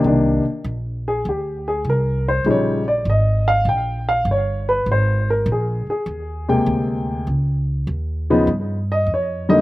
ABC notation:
X:1
M:4/4
L:1/8
Q:"Swing" 1/4=100
K:Cm
V:1 name="Grand piano"
z3 A G A B c | _d =d e f g f _d =B | c B A A4- A | z4 z e _d e |]
V:2 name="Grand piano" clef=bass
[C,E,B,D] z6 z | [_D,F,G,E] z6 z | z4 z [C,A,B,g]3 | z3 [_D,F,_CE] z3 [=D,G,B,E] |]
V:3 name="Upright bass" clef=bass
C,, z B,,,2 D,,2 C,,2 | B,,,2 A,,,2 B,,,2 G,,,2 | A,,,2 B,,, z E,,2 D,,2 | _D,,2 E,,2 G,,2 F,,2 |]